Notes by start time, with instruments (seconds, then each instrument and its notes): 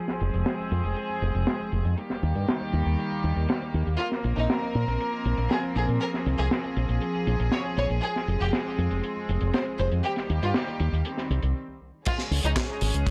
Already playing: string section F3 G#3 C4 G#4
0.08 snare
0.20 fingered electric bass F1, closed hi-hat
0.34 fingered electric bass F1, closed hi-hat
0.46 snare, closed hi-hat
0.72 fingered electric bass F2, closed hi-hat
0.84 fingered electric bass F1, closed hi-hat
0.96 closed hi-hat
1.22 fingered electric bass F1, closed hi-hat
1.34 fingered electric bass F1, closed hi-hat
1.47 snare, closed hi-hat
1.72 fingered electric bass F1, closed hi-hat
1.85 fingered electric bass F2, closed hi-hat
1.97 string section D#3 G3 A#3 G4, closed hi-hat
2.10 snare
2.23 fingered electric bass D#2, closed hi-hat
2.35 fingered electric bass G2, closed hi-hat
2.48 snare, closed hi-hat
2.61 closed hi-hat
2.73 fingered electric bass D#2, closed hi-hat
2.86 fingered electric bass D#2, closed hi-hat
2.99 closed hi-hat
3.10 closed hi-hat
3.24 fingered electric bass D#2, closed hi-hat
3.36 fingered electric bass D#2, closed hi-hat
3.49 snare, closed hi-hat
3.62 closed hi-hat
3.74 fingered electric bass D#2, closed hi-hat
3.87 fingered electric bass D#2, closed hi-hat
3.99 string section F3 C4 A#4, violin section F4, closed hi-hat
4.12 snare
4.24 fingered electric bass A#1, closed hi-hat
4.37 fingered electric bass A#1, violin section D#4, closed hi-hat
4.50 snare, closed hi-hat
4.75 fingered electric bass A#2, closed hi-hat
4.88 fingered electric bass A#1, closed hi-hat
5.00 closed hi-hat
5.25 fingered electric bass A#1, closed hi-hat
5.38 fingered electric bass A#1, closed hi-hat
5.51 violin section G#4, snare, closed hi-hat
5.76 fingered electric bass A#1, violin section G#4, closed hi-hat
5.88 fingered electric bass A#2, closed hi-hat
6.01 string section G#4, violin section A#4, closed hi-hat
6.14 snare
6.26 fingered electric bass C2, closed hi-hat
6.39 fingered electric bass C2, violin section G#4, closed hi-hat
6.51 snare, closed hi-hat
6.64 closed hi-hat
6.77 fingered electric bass A#1, closed hi-hat
6.89 fingered electric bass A#1, closed hi-hat
7.01 closed hi-hat
7.15 closed hi-hat
7.27 fingered electric bass A#1, closed hi-hat
7.40 fingered electric bass A#1, closed hi-hat
7.52 violin section C#5, snare, closed hi-hat
7.65 closed hi-hat
7.77 fingered electric bass A#1, violin section C#5, closed hi-hat
7.90 fingered electric bass A#1, closed hi-hat
8.03 string section G#3 C4, violin section G#4, closed hi-hat
8.16 snare
8.28 fingered electric bass F1, closed hi-hat
8.40 fingered electric bass F1, violin section G4, closed hi-hat
8.53 snare, closed hi-hat
8.78 fingered electric bass F2, closed hi-hat
8.91 fingered electric bass F1, closed hi-hat
9.03 closed hi-hat
9.29 fingered electric bass F1, closed hi-hat
9.41 fingered electric bass F1, closed hi-hat
9.53 violin section C5, snare, closed hi-hat
9.79 fingered electric bass F1, violin section C5, closed hi-hat
9.92 fingered electric bass F2, closed hi-hat
10.04 string section D#3 G3 A#3 G4, violin section G4, closed hi-hat
10.16 snare, closed hi-hat
10.30 fingered electric bass D#2, closed hi-hat
10.42 fingered electric bass G2, violin section F4, closed hi-hat
10.54 snare, closed hi-hat
10.67 closed hi-hat
10.80 fingered electric bass D#2, closed hi-hat
10.93 fingered electric bass D#2, closed hi-hat
11.05 string section D#3 G3 C4, closed hi-hat
11.18 snare, closed hi-hat
11.30 fingered electric bass C2, closed hi-hat
11.42 fingered electric bass C2, closed hi-hat
12.05 string section F3 G#3 C#4 G#4, violin section F4, kick, closed hi-hat, crash
12.19 snare
12.31 fingered electric bass C#2, open hi-hat
12.44 fingered electric bass C#2, violin section D#4, closed hi-hat
12.56 kick, snare, clap, closed hi-hat
12.81 fingered electric bass G#1, open hi-hat
12.94 fingered electric bass C#2, closed hi-hat
13.07 kick, closed hi-hat